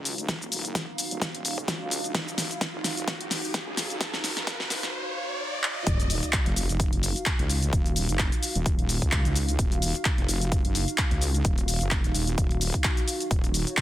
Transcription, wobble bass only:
0.00 0.27 C#2 loud
0.29 0.63 D#1 medium
0.65 0.86 F#1 loud
1.11 1.56 D#1 medium
1.58 1.79 C#2 medium
1.81 2.13 C#2 loud
2.15 2.49 D#1 loud
2.74 3.18 F1 medium
3.21 3.42 F#1 loud
3.67 3.99 C#2 loud
4.01 4.35 D#1 medium
4.37 4.58 F#1 loud
4.60 4.81 F#1 loud
4.83 4.94 D#1 loud
5.87 6.21 D#1 loud
6.46 6.91 F1 loud
6.93 7.14 F#1 medium
7.39 7.71 C#2 loud
7.73 8.07 D#1 loud
8.09 8.30 F#1 loud
8.55 9.00 D#1 medium
9.02 9.23 C#2 loud
9.25 9.57 C#2 loud
9.59 9.93 D#1 loud
10.18 10.63 F1 medium
10.65 10.86 F#1 loud
11.11 11.43 C#2 loud
11.45 11.79 D#1 loud
11.81 12.02 F#1 loud
12.04 12.13 D#1 loud
12.15 12.36 D#1 loud
12.38 12.72 D#1 loud
13.31 13.65 D#1 loud

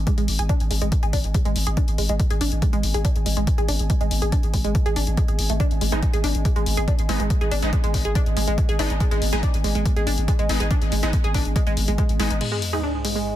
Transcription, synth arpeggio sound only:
0.07 0.09 G#3 medium
0.18 0.24 G#3 loud
0.39 0.43 G#4 loud
0.49 0.53 D4 loud
0.71 0.73 G#3 medium
0.82 0.87 G#3 loud
1.03 1.07 G#4 loud
1.13 1.17 D4 loud
1.34 1.37 G#3 medium
1.45 1.51 G#3 loud
1.67 1.71 G#4 loud
1.77 1.81 D4 loud
1.98 2.01 G#3 medium
2.09 2.15 G#3 loud
2.31 2.34 G#4 loud
2.41 2.45 D4 loud
2.62 2.65 G#3 medium
2.73 2.79 G#3 loud
2.94 2.98 G#4 loud
3.05 3.09 D4 medium
3.26 3.28 G#3 medium
3.37 3.43 G#3 loud
3.58 3.62 G#4 loud
3.69 3.73 D4 loud
3.90 3.92 G#3 medium
4.01 4.07 G#3 loud
4.22 4.26 G#4 loud
4.32 4.36 D4 loud
4.54 4.56 G#3 medium
4.65 4.70 G#3 loud
4.86 4.90 G#4 loud
4.96 5.00 D4 loud
5.17 5.22 G#3 medium
5.28 5.34 G#4 medium
5.50 5.52 A3 medium
5.60 5.64 D4 loud
5.81 5.84 G#3 medium
5.92 5.98 G#3 loud
6.13 6.17 G#4 loud
6.24 6.28 D4 loud
6.45 6.48 G#3 medium
6.56 6.62 G#3 loud
6.77 6.81 G#4 loud
6.88 6.92 D4 loud
7.09 7.11 G#3 medium
7.20 7.26 G#3 loud
7.41 7.45 G#4 loud
7.51 7.56 D4 loud
7.73 7.75 G#3 medium
7.84 7.90 G#3 loud
8.05 8.09 G#4 loud
8.15 8.19 D4 loud
8.37 8.39 G#3 medium
8.48 8.53 G#3 loud
8.69 8.73 G#4 loud
8.79 8.83 D4 loud
9.00 9.03 G#3 medium
9.11 9.17 G#3 loud
9.33 9.37 G#4 loud
9.43 9.47 D4 loud
9.64 9.67 G#3 medium
9.75 9.81 G#3 loud
9.96 10.00 G#4 loud
10.07 10.11 D4 medium
10.28 10.31 G#3 medium
10.39 10.45 G#3 loud
10.60 10.64 G#4 loud
10.71 10.75 D4 loud
10.92 10.94 G#3 medium
11.03 11.09 G#3 loud
11.24 11.28 G#4 loud
11.34 11.39 D4 loud
11.56 11.58 G#3 medium
11.67 11.73 G#3 loud
11.88 11.90 G#3 medium
11.98 12.02 G#3 medium
12.20 12.24 G#3 loud
12.30 12.34 G#3 medium
12.41 12.43 G#3 medium
12.52 12.58 G#3 loud
12.73 12.77 G#4 loud
12.83 12.88 D4 loud
13.05 13.07 G#3 medium
13.16 13.21 G#3 loud

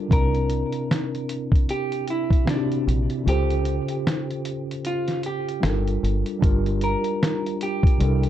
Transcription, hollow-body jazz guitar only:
0.13 1.66 A#4 loud
1.70 2.05 G4 medium
2.10 2.45 E4 medium
2.50 2.84 D4 medium
3.29 4.81 G4 loud
4.87 5.21 F4 medium
5.26 5.84 G4 medium
6.84 7.58 A#4 medium
7.63 8.29 G4 medium

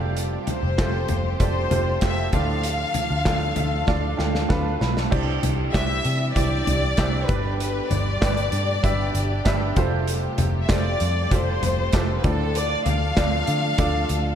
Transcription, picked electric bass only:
0.00 0.36 F1 medium
0.63 0.76 F1 medium
0.79 1.04 F1 medium
1.10 1.35 F1 loud
1.40 1.66 F1 medium
1.71 1.97 F1 medium
2.02 2.28 F1 medium
2.33 2.84 D2 medium
3.11 3.23 D2 medium
3.26 3.51 D2 medium
3.57 3.82 D2 loud
3.88 4.13 D2 medium
4.19 4.45 D2 medium
4.50 4.76 D2 medium
4.81 5.06 B1 medium
5.12 5.38 C2 medium
5.43 5.68 C2 medium
5.74 6.00 C2 medium
6.05 6.31 C3 loud
6.36 6.61 C2 medium
6.67 6.92 C2 medium
6.98 7.23 C2 medium
7.29 7.80 G1 medium
7.91 8.16 G1 medium
8.22 8.47 G1 medium
8.52 8.78 G2 loud
8.84 9.09 G1 medium
9.15 9.40 G1 medium
9.46 9.71 G1 medium
9.77 10.27 F1 medium
10.39 10.64 F1 medium
10.70 10.95 F1 medium
11.01 11.26 F2 medium
11.32 11.57 F1 loud
11.63 11.88 F1 medium
11.94 12.19 F1 medium
12.25 12.75 D2 medium
12.86 13.11 D2 medium
13.17 13.42 D2 medium
13.48 13.73 D3 loud
13.79 14.04 D2 loud
14.10 14.35 D2 medium

